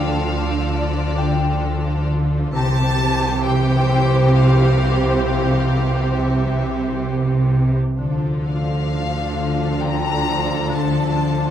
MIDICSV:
0, 0, Header, 1, 9, 480
1, 0, Start_track
1, 0, Key_signature, -1, "minor"
1, 0, Tempo, 909091
1, 1343, Time_signature, 3, 2, 24, 8
1, 6075, End_track
2, 0, Start_track
2, 0, Title_t, "Violin section"
2, 0, Program_c, 0, 48
2, 0, Note_on_c, 0, 86, 32
2, 0, Note_on_c, 0, 88, 31
2, 0, Note_on_c, 0, 89, 32
2, 1081, Note_off_c, 0, 88, 0
2, 1082, Note_off_c, 0, 86, 0
2, 1086, Note_off_c, 0, 89, 0
2, 6075, End_track
3, 0, Start_track
3, 0, Title_t, "Harp"
3, 0, Program_c, 1, 46
3, 0, Note_on_c, 1, 79, 40
3, 617, Note_off_c, 1, 79, 0
3, 623, Note_on_c, 1, 79, 54
3, 1346, Note_on_c, 1, 70, 46
3, 2066, Note_on_c, 1, 84, 49
3, 2682, Note_off_c, 1, 79, 0
3, 3405, Note_off_c, 1, 70, 0
3, 4125, Note_off_c, 1, 84, 0
3, 5178, Note_on_c, 1, 79, 48
3, 6075, Note_off_c, 1, 79, 0
3, 6075, End_track
4, 0, Start_track
4, 0, Title_t, "Violin section"
4, 0, Program_c, 2, 48
4, 0, Note_on_c, 2, 77, 67
4, 372, Note_off_c, 2, 77, 0
4, 385, Note_on_c, 2, 74, 64
4, 864, Note_off_c, 2, 74, 0
4, 1346, Note_on_c, 2, 81, 99
4, 1803, Note_off_c, 2, 81, 0
4, 1823, Note_on_c, 2, 79, 76
4, 2295, Note_on_c, 2, 77, 69
4, 2303, Note_off_c, 2, 79, 0
4, 2766, Note_off_c, 2, 77, 0
4, 2772, Note_on_c, 2, 77, 64
4, 3248, Note_off_c, 2, 77, 0
4, 3262, Note_on_c, 2, 76, 44
4, 3742, Note_off_c, 2, 76, 0
4, 4462, Note_on_c, 2, 77, 64
4, 5162, Note_off_c, 2, 77, 0
4, 5178, Note_on_c, 2, 82, 84
4, 5659, Note_on_c, 2, 81, 73
4, 5661, Note_off_c, 2, 82, 0
4, 6075, Note_off_c, 2, 81, 0
4, 6075, End_track
5, 0, Start_track
5, 0, Title_t, "Violin section"
5, 0, Program_c, 3, 48
5, 0, Note_on_c, 3, 65, 40
5, 0, Note_on_c, 3, 69, 40
5, 1320, Note_off_c, 3, 65, 0
5, 1323, Note_off_c, 3, 69, 0
5, 1344, Note_on_c, 3, 67, 66
5, 1344, Note_on_c, 3, 72, 66
5, 4097, Note_off_c, 3, 67, 0
5, 4097, Note_off_c, 3, 72, 0
5, 4226, Note_on_c, 3, 65, 40
5, 4228, Note_on_c, 3, 69, 42
5, 6075, Note_off_c, 3, 65, 0
5, 6075, Note_off_c, 3, 69, 0
5, 6075, End_track
6, 0, Start_track
6, 0, Title_t, "Viola section"
6, 0, Program_c, 4, 48
6, 0, Note_on_c, 4, 53, 42
6, 0, Note_on_c, 4, 62, 41
6, 1322, Note_off_c, 4, 62, 0
6, 1323, Note_off_c, 4, 53, 0
6, 1338, Note_on_c, 4, 67, 68
6, 1340, Note_on_c, 4, 52, 65
6, 4094, Note_off_c, 4, 67, 0
6, 4095, Note_off_c, 4, 52, 0
6, 4219, Note_on_c, 4, 62, 45
6, 4220, Note_on_c, 4, 53, 42
6, 6075, Note_off_c, 4, 53, 0
6, 6075, Note_off_c, 4, 62, 0
6, 6075, End_track
7, 0, Start_track
7, 0, Title_t, "Cello section"
7, 0, Program_c, 5, 48
7, 0, Note_on_c, 5, 50, 41
7, 1321, Note_off_c, 5, 50, 0
7, 1342, Note_on_c, 5, 48, 60
7, 4096, Note_off_c, 5, 48, 0
7, 4222, Note_on_c, 5, 50, 45
7, 6075, Note_off_c, 5, 50, 0
7, 6075, End_track
8, 0, Start_track
8, 0, Title_t, "Marimba"
8, 0, Program_c, 6, 12
8, 374, Note_on_c, 6, 50, 42
8, 521, Note_off_c, 6, 50, 0
8, 615, Note_on_c, 6, 50, 69
8, 761, Note_off_c, 6, 50, 0
8, 857, Note_on_c, 6, 50, 50
8, 1002, Note_off_c, 6, 50, 0
8, 1097, Note_on_c, 6, 50, 50
8, 1243, Note_off_c, 6, 50, 0
8, 1336, Note_on_c, 6, 48, 75
8, 1482, Note_off_c, 6, 48, 0
8, 1574, Note_on_c, 6, 48, 54
8, 1720, Note_off_c, 6, 48, 0
8, 1819, Note_on_c, 6, 48, 54
8, 1964, Note_off_c, 6, 48, 0
8, 2059, Note_on_c, 6, 48, 68
8, 2204, Note_off_c, 6, 48, 0
8, 2293, Note_on_c, 6, 48, 50
8, 2440, Note_off_c, 6, 48, 0
8, 2778, Note_on_c, 6, 48, 53
8, 2924, Note_off_c, 6, 48, 0
8, 3018, Note_on_c, 6, 48, 35
8, 3163, Note_off_c, 6, 48, 0
8, 3258, Note_on_c, 6, 48, 30
8, 3404, Note_off_c, 6, 48, 0
8, 3503, Note_on_c, 6, 48, 46
8, 3647, Note_off_c, 6, 48, 0
8, 3736, Note_on_c, 6, 48, 30
8, 3882, Note_off_c, 6, 48, 0
8, 3980, Note_on_c, 6, 48, 28
8, 4125, Note_off_c, 6, 48, 0
8, 4218, Note_on_c, 6, 50, 50
8, 4363, Note_off_c, 6, 50, 0
8, 4456, Note_on_c, 6, 50, 35
8, 4602, Note_off_c, 6, 50, 0
8, 4694, Note_on_c, 6, 50, 34
8, 4841, Note_off_c, 6, 50, 0
8, 4934, Note_on_c, 6, 50, 59
8, 5080, Note_off_c, 6, 50, 0
8, 5176, Note_on_c, 6, 50, 43
8, 5322, Note_off_c, 6, 50, 0
8, 5651, Note_on_c, 6, 50, 71
8, 5799, Note_off_c, 6, 50, 0
8, 5896, Note_on_c, 6, 50, 53
8, 6042, Note_off_c, 6, 50, 0
8, 6075, End_track
9, 0, Start_track
9, 0, Title_t, "Double bass section"
9, 0, Program_c, 7, 48
9, 0, Note_on_c, 7, 38, 43
9, 1321, Note_off_c, 7, 38, 0
9, 1339, Note_on_c, 7, 36, 68
9, 4095, Note_off_c, 7, 36, 0
9, 4218, Note_on_c, 7, 38, 46
9, 6075, Note_off_c, 7, 38, 0
9, 6075, End_track
0, 0, End_of_file